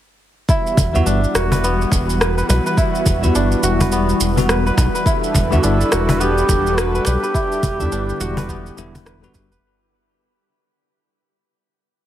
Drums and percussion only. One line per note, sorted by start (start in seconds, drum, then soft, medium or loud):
0.49 kick loud
0.49 shaker soft
0.67 shaker soft
0.77 cajon bass medium
0.77 kick medium
0.77 cajon slap medium
0.77 shaker medium
0.95 shaker soft
1.07 shaker soft
1.24 shaker soft
1.35 cross-stick medium
1.35 shaker medium
1.52 cajon bass medium
1.52 shaker soft
1.64 shaker soft
1.81 shaker soft
1.92 kick medium
1.92 cajon slap medium
1.92 shaker medium
2.10 shaker soft
2.21 cross-stick medium
2.21 shaker soft
2.38 shaker soft
2.50 cajon slap medium
2.50 shaker medium
2.66 shaker soft
2.77 kick loud
2.77 shaker soft
2.95 shaker soft
3.06 cajon bass medium
3.06 kick loud
3.06 cajon slap medium
3.06 shaker medium
3.23 shaker soft
3.35 shaker soft
3.52 shaker soft
3.63 shaker medium
3.80 cajon bass medium
3.80 shaker soft
3.92 shaker soft
4.09 shaker soft
4.21 shaker medium
4.37 cajon bass medium
4.37 shaker soft
4.49 cross-stick medium
4.49 shaker soft
4.67 shaker soft
4.77 kick loud
4.77 cajon slap medium
4.77 shaker medium
4.95 shaker soft
5.06 kick loud
5.06 shaker soft
5.24 shaker soft
5.34 kick loud
5.34 cajon bass medium
5.34 cajon slap medium
5.34 shaker medium
5.52 shaker soft
5.63 shaker soft
5.81 shaker soft
5.92 cross-stick medium
5.92 shaker medium
6.09 cajon bass medium
6.09 shaker soft
6.21 shaker soft
6.38 shaker soft
6.49 kick loud
6.49 cajon slap medium
6.49 shaker medium
6.67 shaker soft
6.78 cross-stick medium
6.78 shaker soft
6.95 shaker soft
7.05 cajon slap medium
7.05 shaker medium
7.24 shaker soft
7.34 kick loud
7.34 shaker soft
7.52 shaker soft
7.63 cajon bass medium
7.63 kick loud
7.63 cajon slap medium
7.63 shaker medium
7.80 shaker soft
7.92 shaker soft
8.09 shaker soft
8.21 cajon slap medium
8.21 shaker medium
8.37 cajon bass medium
8.37 shaker soft
8.49 kick medium
8.49 shaker soft
8.66 shaker soft
8.78 shaker medium
8.95 cajon bass medium
8.95 shaker soft
9.06 cross-stick medium
9.06 shaker soft
9.23 shaker soft
9.34 kick loud
9.34 cajon slap medium
9.34 shaker medium
9.52 shaker soft